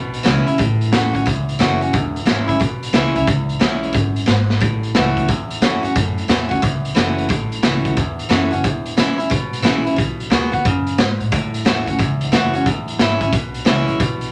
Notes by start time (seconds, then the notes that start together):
Already playing: B1 B2
0.14 closed hi-hat
0.23 C#2 E3 G#3 C#4 E4, snare, closed hi-hat
0.46 C#2 C#4 E4, closed hi-hat
0.58 A1 A2, kick, closed hi-hat
0.81 closed hi-hat
0.92 E2 E3 A3 C#4 F#4, snare, closed hi-hat
1.13 C#4 F#4, kick, closed hi-hat
1.26 C#2 E2, kick, closed hi-hat
1.49 closed hi-hat
1.59 F#1 E3 A3 C#4 F#4, snare, closed hi-hat
1.81 C#4 F#4, closed hi-hat
1.93 E1 E2, kick, closed hi-hat
2.16 closed hi-hat
2.26 G#1 E3 G#3 C#4 E4, snare, closed hi-hat
2.48 C#4 E4, kick, closed hi-hat
2.60 B1 B2, kick, closed hi-hat
2.83 closed hi-hat
2.93 C#2 E3 G#3 C#4 E4, snare, closed hi-hat
3.15 C#2 C#4 E4, closed hi-hat
3.27 C#2 E2, kick, closed hi-hat
3.49 closed hi-hat
3.60 B1 E3 G#3 C#4 E4, snare, closed hi-hat
3.83 closed hi-hat
3.93 G#1 F#2, kick, closed hi-hat
4.16 closed hi-hat
4.26 G#1 G#2, snare, closed hi-hat
4.50 snare
4.61 A1 A2, kick, closed hi-hat
4.83 closed hi-hat
4.95 C#2 E3 A3 C#4 F#4, snare, closed hi-hat
5.17 kick, closed hi-hat
5.28 E2, kick, closed hi-hat
5.50 closed hi-hat
5.61 F#2 E3 A3 C#4 F#4, snare, closed hi-hat
5.83 F#2 C#4 F#4, closed hi-hat
5.96 F#2 A2, kick, closed hi-hat
6.18 closed hi-hat
6.28 E2 E3 A3 C#4 F#4, snare, closed hi-hat
6.49 C#4 F#4, kick, closed hi-hat
6.62 C#2 E2, kick, closed hi-hat
6.85 closed hi-hat
6.95 F#1 E3 A3 C#4 F#4, snare, closed hi-hat
7.18 closed hi-hat
7.29 A1 A2, kick, closed hi-hat
7.52 closed hi-hat
7.62 C#2 E3 A3 C#4 F#4, snare, closed hi-hat
7.85 kick, closed hi-hat
7.97 E2, kick, closed hi-hat
8.19 closed hi-hat
8.29 F#2 E3 A3 C#4 F#4, snare, closed hi-hat
8.51 F#1 C#4 F#4, closed hi-hat
8.64 E1 E2, kick, closed hi-hat
8.86 closed hi-hat
8.97 B1 E3 G#3 C#4 E4, snare, closed hi-hat
9.18 C#4 E4, closed hi-hat
9.30 G#1 B2, kick, closed hi-hat
9.53 closed hi-hat
9.62 A#1 E3 G#3 C#4 E4, snare, closed hi-hat
9.85 C#4 E4, closed hi-hat
9.96 B1 B2, kick, closed hi-hat
10.20 closed hi-hat
10.30 D#2 D#3 G#3 B3 F#4, snare, closed hi-hat
10.52 B3 F#4, kick, closed hi-hat
10.65 F#2 C#3, kick, closed hi-hat
10.87 closed hi-hat
10.98 G#2, snare, closed hi-hat
11.20 A2, closed hi-hat
11.32 A1 A2, kick, closed hi-hat
11.54 closed hi-hat
11.65 E2 E3 A3 C#4 F#4, snare, closed hi-hat
11.86 C#4 F#4, kick, closed hi-hat
11.99 C#2 E2, kick, closed hi-hat
12.21 closed hi-hat
12.32 F#1 E3 A3 C#4 F#4, snare, closed hi-hat
12.54 C#4 F#4, closed hi-hat
12.66 E1 E2, kick, closed hi-hat
12.88 closed hi-hat
12.98 G#1 E3 G#3 C#4 E4, snare, closed hi-hat
13.21 C#4 E4, kick, closed hi-hat
13.33 B1 B2, kick, closed hi-hat
13.54 closed hi-hat
13.65 C#2 E3 G#3 C#4 E4, snare, closed hi-hat
13.88 A1, closed hi-hat
14.00 B1 B2, kick, closed hi-hat
14.21 closed hi-hat